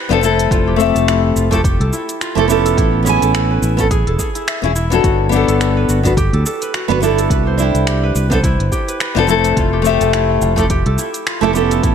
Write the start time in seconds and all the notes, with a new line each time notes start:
Already playing: E4 G4 A4 B4
0.09 F1 B3 D4 A4 C5, closed hi-hat
0.21 A3 C4 E4 A4, shaker
0.39 closed hi-hat, shaker
0.51 F1 F4, kick, closed hi-hat, shaker
0.67 G4
0.76 A3 C4 G4, shaker
0.81 G4 E5
0.95 F1 A4, closed hi-hat, shaker
1.08 E4, finger snap, closed hi-hat, shaker
1.36 F1 F4, shaker
1.51 A3 C4 E4 G4 A4, kick, closed hi-hat, shaker
1.64 G4, kick, closed hi-hat, shaker
1.80 C2 A4, closed hi-hat
1.93 E4, shaker
2.09 closed hi-hat, shaker
2.21 F4, finger snap, closed hi-hat, shaker
2.35 F1 A3 C4 E4 G4 A4, closed hi-hat
2.48 B3 C#4 E4 G4 A4, shaker
2.65 A4, closed hi-hat, shaker
2.77 A1 E4, kick, closed hi-hat, shaker
3.03 B3 C#4 G#4, shaker
3.07 E4 G#5
3.22 A1 A4, closed hi-hat, shaker
3.34 A4, finger snap, closed hi-hat, shaker
3.51 B4
3.62 A1 E4, shaker
3.77 B3 C#4 A4, kick, closed hi-hat, shaker
3.91 G#4, kick, closed hi-hat, shaker
4.07 E1 A4, closed hi-hat
4.19 G#4, kick, shaker
4.35 E4, closed hi-hat, shaker
4.47 E5, finger snap, closed hi-hat, shaker
4.62 E1 B3 C#4 E4 G#4, closed hi-hat
4.75 E4, shaker
4.90 B3 D4 F#4 A4 C#5, closed hi-hat, shaker
5.04 G1 F#4, kick, closed hi-hat, shaker
5.29 B3 D4 G4, shaker
5.34 A4 F#5
5.48 G1 A4, closed hi-hat, shaker
5.61 A4, finger snap, closed hi-hat, shaker
5.77 B4
5.89 G1 F#4, shaker
6.03 B3 D4 F#4 B4, kick, closed hi-hat, shaker
6.17 G4, kick, closed hi-hat, shaker
6.33 D2 A4, closed hi-hat
6.46 A4, shaker
6.62 B4, closed hi-hat, shaker
6.74 F#4, finger snap, closed hi-hat, shaker
6.88 G1 B3 D4 F#4 B4, closed hi-hat
7.00 B3 D4 E4 G4 A4, shaker
7.18 A4, closed hi-hat, shaker
7.30 C2 B4, kick, closed hi-hat, shaker
7.47 C5
7.58 D4 E4, shaker
7.62 G4
7.75 C2, closed hi-hat, shaker
7.87 G4, finger snap, closed hi-hat, shaker
8.03 B4
8.15 C2 B4, shaker
8.30 B3 D4 A4 C5, kick, closed hi-hat, shaker
8.44 E4, kick, closed hi-hat, shaker
8.60 G1, closed hi-hat
8.72 G4, kick, shaker
8.88 B4, closed hi-hat, shaker
9.00 B4, finger snap, closed hi-hat, shaker
9.15 F1 B3 D4 A4 C5, closed hi-hat
9.27 A3 C4 E4 A4, shaker
9.44 closed hi-hat, shaker
9.57 F1 F4, kick, closed hi-hat, shaker
9.73 G4
9.82 A3 C4 G4, shaker
9.86 G4 E5
10.01 F1 A4, closed hi-hat, shaker
10.13 E4, finger snap, closed hi-hat, shaker
10.42 F1 F4, shaker
10.56 A3 C4 E4 G4 A4, kick, closed hi-hat, shaker
10.70 G4, kick, closed hi-hat, shaker
10.86 C2 A4, closed hi-hat
10.98 E4, shaker
11.14 closed hi-hat, shaker
11.27 F4, finger snap, closed hi-hat, shaker
11.41 F1 A3 C4 E4 G4 A4, closed hi-hat
11.53 B3 C#4 E4 G4 A4, shaker
11.71 A4, closed hi-hat, shaker
11.83 A1 E4, kick, closed hi-hat, shaker